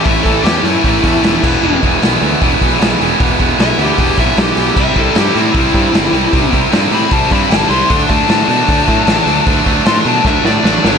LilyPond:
<<
  \new Staff \with { instrumentName = "Lead electric guitar" } { \time 4/4 \key e \mixolydian \tempo 4 = 153 e''8 a'8 g'8 e'2~ e'8~ | e'8 r2. r8 | r4 e''8 g'8 g'8 e''8 g'8 g'8 | e''8 a'8 g'8 e'2~ e'8~ |
e'8 r4 b''8 a''8 b''8 a''8 c'''8~ | c'''8 a''8 a''2. | r4 c'''8 a''8 e''8 d''8 d''8 cis''8 | }
  \new Staff \with { instrumentName = "Overdriven electric guitar" } { \time 4/4 \key e \mixolydian <a, e a cis' e'>8 <a, e a cis' e'>8 <a, e a cis' e'>8 <a, e a cis' e'>8 <a, e a cis' e'>8 <a, e a cis' e'>8 <a, e a cis' e'>8 <e gis b e'>8 | <e gis b e'>8 <e gis b e'>8 <e gis b e'>8 <e gis b e'>8 <e gis b e'>8 <e gis b e'>8 <e gis b e'>8 <e gis b e'>8 | <e gis b e'>8 <e gis b e'>8 <e gis b e'>8 <e gis b e'>8 <e gis b e'>8 <e gis b e'>8 <e gis b e'>8 <e gis b e'>8 | <c g c' e'>8 <c g c' e'>8 <c g c' e'>8 <c g c' e'>8 <c g c' e'>8 <c g c' e'>8 <c g c' e'>8 <c g c' e'>8 |
<c g c' e'>8 <c g c' e'>8 <c g c' e'>8 <c g c' e'>8 <c g c' e'>8 <c g c' e'>8 <c g c' e'>8 <c g c' e'>8 | <d fis a d'>8 <d fis a d'>8 <d fis a d'>8 <d fis a d'>8 <d fis a d'>8 <d fis a d'>8 <d fis a d'>8 <d fis a d'>8 | <d fis a d'>8 <d fis a d'>8 <d fis a d'>8 <d fis a d'>8 <d fis a d'>8 <d fis a d'>8 <d fis a d'>8 <d fis a d'>8 | }
  \new Staff \with { instrumentName = "Overdriven electric guitar" } { \clef bass \time 4/4 \key e \mixolydian <a, e a>8 <a, e a>8 <a, e a>8 <a, e a>8 <a, e a>8 <a, e a>8 <a, e a>8 <e, b, e>8 | <e, b, e>8 <e, b, e>8 <e, b, e>8 <e, b, e>8 <e, b, e>8 <e, b, e>8 <e, b, e>8 <e, b, e>8 | <e, b, e>8 <e, b, e>8 <e, b, e>8 <e, b, e>8 <e, b, e>8 <e, b, e>8 <e, b, e>8 <e, b, e>8 | <c g c'>8 <c g c'>8 <c g c'>8 <c g c'>8 <c g c'>8 <c g c'>8 <c g c'>8 <c g c'>8 |
<c g c'>8 <c g c'>8 <c g c'>8 <c g c'>8 <c g c'>8 <c g c'>8 <c g c'>8 <c g c'>8 | <d a d'>8 <d a d'>8 <d a d'>8 <d a d'>8 <d a d'>8 <d a d'>8 <d a d'>8 <d a d'>8 | <d a d'>8 <d a d'>8 <d a d'>8 <d a d'>8 <d a d'>8 <d a d'>8 <d a d'>8 <d a d'>8 | }
  \new Staff \with { instrumentName = "Picked electric bass" } { \clef bass \time 4/4 \key e \mixolydian a,,8 a,,8 e,8 fis,8 a,,8 e,8 e,,8 e,,8 | e,,8 e,,8 b,,8 d,8 e,,8 b,,8 b,,8 e,,8 | e,,8 e,,8 b,,8 d,8 e,,8 b,,8 b,,8 b,,8 | c,8 c,8 g,8 a,8 c,8 g,8 g,,8 c,8 |
c,8 c,8 g,8 a,8 c,8 g,8 g,,8 c,8 | d,8 d,8 a,8 b,8 d,8 a,8 a,,8 d,8 | d,8 d,8 a,8 b,8 d,8 a,8 a,,8 gis,,8 | }
  \new DrumStaff \with { instrumentName = "Drums" } \drummode { \time 4/4 <hho bd>8 <hho bd>8 <hho sn>8 hho8 <hho bd>8 <hho bd>8 <hho sn>8 <cymc bd>8 | r8 <hho bd>8 <hho sn>8 hho8 <hho bd>8 <hho bd>8 <hho sn>8 hho8 | <hho bd>8 <hho bd>8 <hho sn>8 hho8 <hho bd>8 <hho bd>8 <hho sn>8 hho8 | <cymc bd>8 <hho bd>8 <hho sn>8 hho8 <hho bd>8 <hho bd>8 <hho sn>8 hho8 |
<hho bd>8 <hho bd>8 <hho sn>8 hho8 <hho bd>8 <hho bd>8 <hho sn>8 hho8 | <hho bd>8 <hho bd>8 <hho sn>8 hho8 <hho bd>8 <hho bd>8 <hho sn>8 hho8 | <hho bd>8 <hho bd>8 <hho sn>8 hho8 <bd sn>8 sn8 sn8 sn8 | }
>>